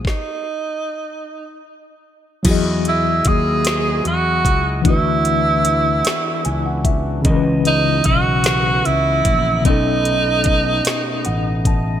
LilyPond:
<<
  \new Staff \with { instrumentName = "Tine electric piano" } { \time 6/8 \key e \major \tempo 4. = 50 << { r2. | r2. | r2 gis''16 fis''16 e''8 | r2. |
r2 fis''8 a''8 | } \\ { r2. | <fis e' fis' gis' dis''>2. | <e d' e' fis' b'>2. | <cis e cis' ais' b' dis''>2. |
<b, b cis' dis' a'>2. | } >> }
  \new Staff \with { instrumentName = "Tenor saxophone" } { \time 6/8 \key e \major dis'2 r4 | r8 e'8 gis'4 fis'4 | e'2~ e'8 r8 | r8 dis'8 fis'4 e'4 |
dis'2~ dis'8 r8 | }
  \new Staff \with { instrumentName = "Tonewheel organ" } { \time 6/8 \key e \major << { r2. | <fis' gis'>2. | e2. | dis''2.~ |
dis''2. | } \\ { r2. | e'2. | d'2. | cis2. |
r2. | } >> }
  \new Staff \with { instrumentName = "Tonewheel organ" } { \time 6/8 \key e \major r2. | dis''2. | b2.~ | b2. |
a2. | }
  \new Staff \with { instrumentName = "Fretless electric bass" } { \clef bass \time 6/8 \key e \major r2. | e,4 dis,4 e,8 cis,8 | d,4. r8 cis,4 | cis,4 b,,4 cis,8 ais,,8 |
b,,4. r8 a,,4 | }
  \new DrumStaff \with { instrumentName = "Drums" } \drummode { \time 6/8 <bd sn>4. r4. | <cymc hh bd>8 hh8 <hh bd>8 <hh sn>8 hh8 <hh bd>8 | <hh bd>8 hh8 hh8 <hh sn>8 hh8 <hh bd>8 | <hh bd>8 hh8 <hh bd>8 <hh sn>8 hh8 <hh bd>8 |
<hh bd>8 hh8 <hh bd>8 <hh sn>8 hh8 <hh bd>8 | }
>>